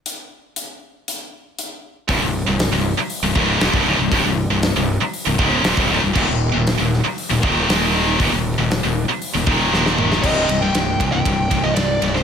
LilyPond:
<<
  \new Staff \with { instrumentName = "Lead electric guitar" } { \time 4/4 \key c \minor \tempo 4 = 118 r1 | r1 | r1 | r1 |
r1 | ees''8. g''4 g''4 ees''16 d''8. c''16 | }
  \new Staff \with { instrumentName = "Distorted electric guitar" } { \clef bass \time 4/4 \key c \minor r1 | <c, g,>16 <c, g,>8 <c, g,>8 <c, g,>8 r8 <c, g,>16 <des, aes, des>8 <ees, bes,>16 <c, g,>16 <des, aes,>16 <c, g,>16 | <c, g,>16 <c, g,>8 <c, g,>8 <c, g,>8 r8 <c, g,>16 <des, aes, des>8 <ees, bes,>16 <c, g,>16 <des, aes,>16 <c, g,>16 | <ees, bes,>16 <ees, bes,>8 <ees, bes,>8 <ees, bes,>8 r8 <ees, bes,>16 <ees, bes, ees>8 <ees, bes, ees>4 |
<ees, bes,>16 <ees, bes,>8 <ees, bes,>8 <ees, bes,>8 r8 <ees, bes,>16 <ees, bes, ees>8 <ees, bes, ees>4 | <c, g, c>8 <c, g,>16 <c, g,>16 <c, g,>8 <c, g,>16 <c, g,>16 <c, g,>8 <c, g,>16 <c, g,>16 <c, g,>8 <c, g,>16 <c, g,>16 | }
  \new Staff \with { instrumentName = "Distorted electric guitar" } { \clef bass \time 4/4 \key c \minor r1 | <c, g,>16 <c, g,>8 <c, g,>8 <c, g,>8 r8 <c, g,>16 <des, aes, des>8 <ees, bes,>16 <c, g,>16 <des, aes,>16 <c, g,>16 | <c, g,>16 <c, g,>8 <c, g,>8 <c, g,>8 r8 <c, g,>16 <des, aes, des>8 <ees, bes,>16 <c, g,>16 <des, aes,>16 <c, g,>16 | <ees, bes,>16 <ees, bes,>8 <ees, bes,>8 <ees, bes,>8 r8 <ees, bes,>16 <ees, bes, ees>8 <ees, bes, ees>4 |
<ees, bes,>16 <ees, bes,>8 <ees, bes,>8 <ees, bes,>8 r8 <ees, bes,>16 <ees, bes, ees>8 <ees, bes, ees>4 | <c, g, c>8 <c, g,>16 <c, g,>16 <c, g,>8 <c, g,>16 <c, g,>16 <c, g,>8 <c, g,>16 <c, g,>16 <c, g,>8 <c, g,>16 <c, g,>16 | }
  \new Staff \with { instrumentName = "Fingered electric bass" } { \clef bass \time 4/4 \key c \minor r1 | c,,16 c,,8 c,,8 c,,8 r8 c,,16 des,,8 ees,,16 c,,16 des,,16 c,,16 | c,,16 c,,8 c,,8 c,,8 r8 c,,16 des,,8 ees,,16 c,,16 des,,16 c,,16 | ees,,16 ees,,8 ees,,8 ees,,8 r8 ees,,16 ees,,8 ees,,4 |
ees,,16 ees,,8 ees,,8 ees,,8 r8 ees,,16 ees,,8 ees,,4 | c,,8 c,,8 c,,8 c,,8 c,,8 c,,8 c,,8 c,,8 | }
  \new DrumStaff \with { instrumentName = "Drums" } \drummode { \time 4/4 hh4 hh4 hh4 hh4 | <hho bd>4 <hho sn>4 hho8 bd8 <hho sn>16 bd8. | <hho bd>4 <hho sn>4 hho8 bd8 <hho sn>16 bd8. | <cymc bd>4 <hho sn>8 sn8 hho8 bd8 <hho sn>4 |
<hho bd>4 <hho sn>4 hho8 bd8 sn16 sn16 toml16 sn16 | <cymc bd>8 cymr8 <cymr sn>8 <bd cymr>8 <bd cymr>8 <bd cymr>8 <cymr sn>8 cymr16 sn16 | }
>>